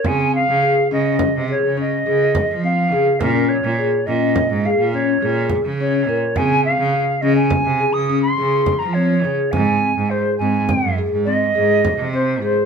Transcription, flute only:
X:1
M:11/8
L:1/16
Q:1/4=104
K:Db
V:1 name="Flute"
a2 f4 e4 d2 e6 f4 | B2 d4 e4 f2 d4 z2 d4 | a2 f4 e a4 e'2 c'4 b d4 | a4 c2 a4 z2 e6 c2 c2 |]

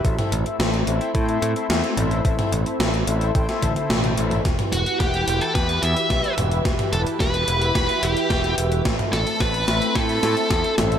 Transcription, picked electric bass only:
X:1
M:4/4
L:1/8
Q:1/4=109
K:Em
V:1 name="Picked electric bass" clef=bass
A,,, A,,, A,,, A,,, A,, A,, E,, A,,, | A,,, A,,, A,,, A,,, A,,, A,,, A,,, A,,, | E,,, E,,, E,,, E,,, E,, E,, B,,, E,,, | E,,, E,,, E,,, E,,, E,,, E,,, E,,, E,,, |
A,,, A,,, A,,, A,,, A,, A,, E,, A,,, |]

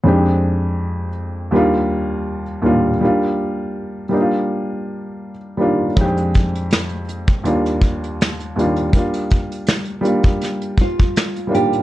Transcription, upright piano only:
X:1
M:4/4
L:1/8
Q:"Swing 16ths" 1/4=81
K:Gphr
V:1 name="Upright piano"
[F,,A,CDG]3 z [E,,G,B,DF]2 z [E,,G,B,DF] | [G,B,DF]3 [G,B,DEF]3 z [G,B,DF] | [F,,A,CDG]3 z [E,,G,B,DF]2 z [E,,G,B,DF] | [G,B,DF]3 [G,B,DF]3 z [G,B,DF] |]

